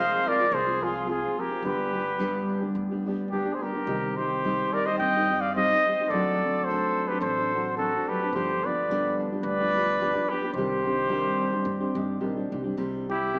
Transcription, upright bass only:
0.00 0.13 F1 medium
0.52 1.24 C2 medium
1.63 2.36 G1 medium
2.75 3.48 D2 medium
3.87 4.60 C2 medium
4.99 5.72 G2 medium
6.10 6.83 D2 medium
7.21 7.94 A1 medium
8.33 9.05 G1 medium
9.43 10.15 D2 medium
10.54 11.26 C2 medium
11.65 11.85 G2 medium
11.95 12.19 G1 medium
12.21 12.49 A#1 medium
12.52 12.75 C2 medium
12.77 13.39 C2 medium

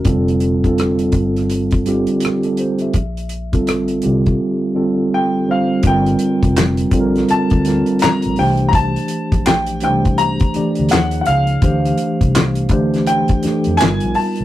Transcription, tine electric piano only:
0.05 0.51 D3 medium
0.05 0.51 G3 medium
0.05 0.52 C4 medium
0.05 0.52 F4 medium
0.05 0.52 A4 loud
0.64 1.66 D3 medium
0.64 1.66 G3 medium
0.64 1.67 C4 medium
0.64 1.67 F4 medium
0.64 1.67 A4 medium
1.85 2.94 D3 medium
1.85 2.94 G3 medium
1.85 2.94 C4 medium
1.85 2.95 F4 medium
1.85 2.21 G4 medium
2.22 2.43 G4 medium
2.45 2.58 A4 medium
2.59 2.80 C5 medium
2.82 3.15 E5 medium
3.52 3.95 D3 medium
3.52 3.95 G3 medium
3.52 3.95 C4 medium
3.52 3.96 F4 medium
3.52 3.96 A4 medium
4.02 4.65 D3 medium
4.02 4.65 G3 medium
4.02 4.65 C4 medium
4.02 4.65 F4 medium
4.02 4.66 G4 medium
4.74 5.37 D3 medium
4.74 5.37 G3 medium
4.74 5.37 C4 medium
4.74 5.38 F4 medium
4.74 5.38 A4 medium
5.48 5.79 D3 medium
5.48 5.79 G3 medium
5.48 5.79 C4 medium
5.48 5.79 F4 medium
5.48 5.79 C5 medium
5.84 6.76 D3 medium
5.84 6.76 G3 medium
5.84 6.77 C4 medium
5.84 6.77 F4 medium
5.84 6.77 A#4 medium
6.92 7.54 D3 medium
6.92 7.54 G3 medium
6.92 7.55 C4 medium
6.92 7.55 F4 medium
6.92 7.01 A4 medium
7.00 7.58 A#4 medium
7.64 8.36 D3 medium
7.64 8.37 G3 medium
7.64 8.37 C4 medium
7.64 8.37 F4 medium
7.64 8.37 A#4 medium
8.36 9.57 E3 medium
8.36 9.57 A3 medium
8.36 9.58 D4 medium
8.36 9.58 G4 medium
8.36 9.58 C5 medium
9.81 10.43 E3 medium
9.81 10.44 A3 medium
9.81 10.44 D4 medium
9.81 10.44 G4 medium
9.81 10.44 C5 medium
10.54 10.90 E3 medium
10.54 10.90 A3 medium
10.54 10.90 D4 medium
10.54 10.91 G4 medium
10.54 10.91 D5 medium
10.89 11.52 F3 medium
10.89 11.52 A#3 medium
10.89 11.52 D#4 medium
10.89 11.52 G#4 medium
10.89 10.98 C5 medium
10.98 11.56 C#5 medium
11.62 12.55 E3 medium
11.62 12.55 A3 medium
11.62 12.55 D4 medium
11.62 12.55 G4 medium
11.62 12.56 C5 medium
12.71 13.33 E3 medium
12.71 13.33 A3 medium
12.71 13.33 D4 medium
12.71 13.33 G4 medium
12.71 13.34 C5 medium
13.43 13.79 E3 medium
13.43 13.79 A3 medium
13.43 13.79 D4 medium
13.43 13.80 G4 medium
13.43 13.80 A4 medium
13.79 14.41 G3 medium
13.79 14.42 B3 medium
13.79 14.42 D#4 medium
13.79 14.42 F4 medium

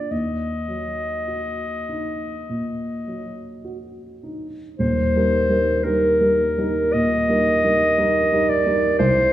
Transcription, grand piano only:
0.00 0.14 A#2 soft
0.00 0.14 D4 soft
0.00 0.14 F4 soft
0.11 2.45 D#2 soft
0.68 1.64 F#3 soft
1.28 2.25 F#4 soft
1.89 2.84 D#4 soft
2.49 3.42 A#2 soft
3.07 4.00 F#3 soft
3.65 4.58 F#4 soft
4.23 4.80 D#4 soft
4.79 5.14 D#1 soft
4.79 5.14 D#2 soft
5.16 5.47 G3 soft
5.16 5.47 D#4 soft
5.16 5.47 A#4 soft
5.50 5.81 G3 soft
5.50 5.81 D#4 soft
5.50 5.81 A#4 soft
5.85 6.16 G3 soft
5.85 6.16 D#4 soft
5.85 6.17 A#4 soft
6.21 6.54 G3 soft
6.21 6.54 D#4 soft
6.21 6.54 A#4 soft
6.58 6.90 G3 soft
6.58 6.91 D#4 soft
6.58 6.91 A#4 soft
6.94 7.28 A#2 soft
7.29 7.60 G3 soft
7.29 7.60 D#4 soft
7.29 7.60 A#4 soft
7.64 7.95 G3 soft
7.64 7.95 D#4 soft
7.64 7.95 A#4 soft
7.98 8.29 G3 soft
7.98 8.29 D#4 soft
7.98 8.29 A#4 soft
8.33 8.63 G3 soft
8.33 8.63 D#4 soft
8.33 8.63 A#4 soft
8.66 8.96 G3 soft
8.66 8.96 D#4 soft
8.66 8.97 A#4 soft
8.99 9.31 C2 medium

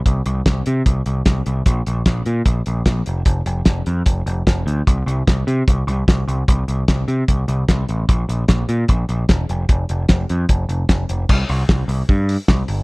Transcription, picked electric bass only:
0.06 0.21 C2 medium
0.26 0.41 C2 medium
0.46 0.61 C2 medium
0.67 0.81 C3 medium
0.86 1.01 C2 medium
1.06 1.21 C2 medium
1.26 1.41 C2 medium
1.47 1.61 C2 medium
1.66 1.81 A#1 medium
1.87 2.02 A#1 medium
2.06 2.21 A#1 medium
2.26 2.41 A#2 medium
2.46 2.61 A#1 medium
2.67 2.82 A#1 medium
2.86 3.01 A#1 medium
3.07 3.22 F1 medium
3.26 3.41 F1 medium
3.46 3.61 F1 medium
3.66 3.81 F1 medium
3.87 4.02 F2 medium
4.06 4.21 F1 medium
4.26 4.41 F1 medium
4.47 4.62 F1 medium
4.66 4.81 D2 medium
4.87 5.02 C2 medium
5.06 5.22 C2 medium
5.28 5.42 C2 medium
5.47 5.62 C3 medium
5.68 5.82 C2 medium
5.87 6.02 C2 medium
6.08 6.23 C2 medium
6.28 6.43 C2 medium
6.48 6.63 C2 medium
6.68 6.83 C2 medium
6.89 7.03 C2 medium
7.08 7.23 C3 medium
7.29 7.43 C2 medium
7.48 7.63 C2 medium
7.69 7.83 C2 medium
7.89 8.04 A1 medium
8.09 8.24 A#1 medium
8.29 8.44 A#1 medium
8.49 8.64 A#1 medium
8.69 8.84 A#2 medium
8.89 9.04 A#1 medium
9.09 9.24 A#1 medium
9.29 9.44 E1 medium
9.50 9.64 F1 medium
9.69 9.84 F1 medium
9.90 10.04 F1 medium
10.10 10.24 F1 medium
10.30 10.44 F2 medium
10.50 10.64 F1 medium
10.69 10.84 F1 medium
10.89 11.04 F1 medium
11.10 11.24 F1 medium
11.30 11.43 C2 loud
11.50 11.63 C2 medium
11.69 11.82 C2 medium
11.88 12.02 C2 medium
12.09 12.36 G2 medium
12.49 12.62 C2 medium
12.69 12.82 G1 medium

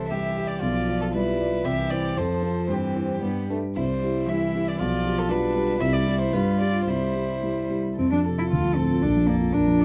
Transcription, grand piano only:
0.00 0.64 C2 soft
0.00 0.12 G4 soft
0.00 0.12 E5 soft
0.12 0.34 G3 soft
0.12 0.34 G4 soft
0.12 0.34 E5 soft
0.37 0.60 G4 soft
0.37 0.60 E5 soft
0.62 0.87 B1 soft
0.88 1.12 F4 soft
0.88 1.12 D5 soft
1.15 1.38 G3 soft
1.15 1.38 F4 soft
1.15 1.38 D5 soft
1.40 1.63 F4 soft
1.40 1.63 D5 soft
1.65 1.90 C2 soft
1.91 2.14 E4 soft
1.91 2.15 C5 soft
2.17 2.42 F2 soft
2.42 2.66 F4 soft
2.42 2.66 C5 soft
2.69 2.95 G2 soft
2.95 3.19 E4 soft
2.95 3.19 C5 soft
3.22 3.48 G2 soft
3.50 3.74 D4 soft
3.50 3.74 B4 soft
3.77 4.02 C2 soft
4.03 4.26 E4 soft
4.03 4.26 G4 soft
4.29 4.52 G3 soft
4.29 4.52 E4 soft
4.29 4.53 G4 soft
4.55 4.78 E4 soft
4.55 4.78 G4 soft
4.80 5.05 B1 soft
5.05 5.28 F4 soft
5.05 5.28 G4 soft
5.31 5.54 G3 soft
5.31 5.53 F4 soft
5.31 5.54 G4 soft
5.56 5.79 F4 soft
5.56 5.79 G4 soft
5.81 6.06 C2 soft
6.07 6.31 E4 soft
6.07 6.31 G4 soft
6.33 6.59 G2 soft
6.60 6.85 F4 soft
6.60 6.85 G4 soft
6.87 7.14 C2 soft
7.15 7.40 E4 soft
7.15 7.40 G4 soft
7.43 7.68 G3 soft
7.43 7.68 E4 soft
7.43 7.68 G4 soft
7.70 7.95 E4 soft
7.70 7.95 G4 soft
7.98 8.49 F2 soft
8.12 8.33 F3 soft
8.27 8.47 C3 soft
8.39 8.51 F4 soft
8.53 9.02 D2 soft
8.64 8.85 F3 soft
8.79 8.99 A2 soft
8.92 9.04 F4 soft
9.04 9.53 A#1 soft
9.17 9.37 F3 soft
9.29 9.50 F2 soft
9.42 9.63 F4 soft
9.54 9.85 A#1 soft
9.67 9.85 F3 soft
9.81 9.85 F2 soft

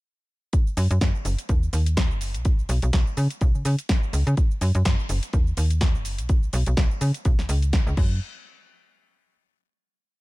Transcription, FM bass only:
0.77 0.88 F#2 loud
0.91 0.99 F#2 medium
1.01 1.12 F#2 loud
1.25 1.36 F#1 medium
1.49 1.68 D#2 medium
1.73 2.12 D#2 medium
2.10 2.36 F#1 loud
2.35 2.65 B1 loud
2.69 2.80 B1 loud
2.83 2.91 B1 medium
2.93 3.04 B1 medium
3.17 3.28 C#3 medium
3.41 3.52 B1 medium
3.55 3.63 C#3 soft
3.65 3.76 C#3 loud
4.13 4.24 C#2 medium
4.27 4.35 C#3 medium
4.61 4.72 F#2 loud
4.75 4.83 F#2 medium
4.86 4.96 F#2 loud
5.09 5.20 F#1 medium
5.33 5.53 D#2 medium
5.57 5.96 D#2 medium
5.95 6.20 F#1 loud
6.19 6.49 B1 loud
6.53 6.64 B1 loud
6.67 6.75 B1 medium
6.77 6.88 B1 medium
7.01 7.12 C#3 medium
7.25 7.36 B1 loud
7.39 7.47 C#2 soft
7.49 7.82 C#2 loud
7.87 7.95 C#2 loud
7.97 8.20 F#2 loud

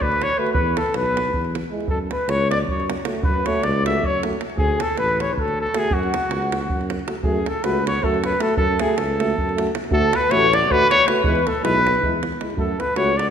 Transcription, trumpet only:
0.02 0.24 B4 loud
0.23 0.40 C#5 loud
0.38 0.52 B4 medium
0.53 0.79 B4 loud
0.77 0.94 A4 medium
0.97 1.44 B4 medium
1.89 1.99 A4 medium
2.12 2.31 B4 medium
2.29 2.50 C#5 loud
2.51 2.59 D5 loud
2.69 2.88 C#5 medium
3.24 3.48 B4 medium
3.46 3.65 C#5 medium
3.64 3.86 D5 loud
3.87 4.07 E5 loud
4.05 4.24 C#5 loud
4.58 4.83 G#4 medium
4.82 4.98 A4 loud
4.99 5.23 B4 loud
5.22 5.35 C#5 medium
5.34 5.41 B4 medium
5.40 5.58 A4 loud
5.61 5.79 A4 loud
5.78 5.95 G#4 loud
5.93 6.92 F#4 medium
7.24 7.50 G#4 medium
7.48 7.65 A4 medium
7.64 7.86 B4 medium
7.87 8.05 C#5 loud
8.04 8.24 A4 medium
8.25 8.43 B4 loud
8.42 8.56 A4 medium
8.57 8.82 A4 loud
8.81 9.00 G#4 medium
8.98 9.74 A4 medium
9.93 10.17 A4 loud
10.16 10.33 B4 loud
10.31 10.55 C#5 loud
10.54 10.73 D5 loud
10.71 10.90 B4 loud
10.90 11.09 C#5 loud
11.07 11.24 B4 loud
11.25 11.49 B4 medium
11.48 11.63 A4 medium
11.64 12.12 B4 loud
12.59 12.82 A4 medium
12.80 12.96 B4 medium
12.96 13.18 C#5 loud
13.17 13.29 D5 loud

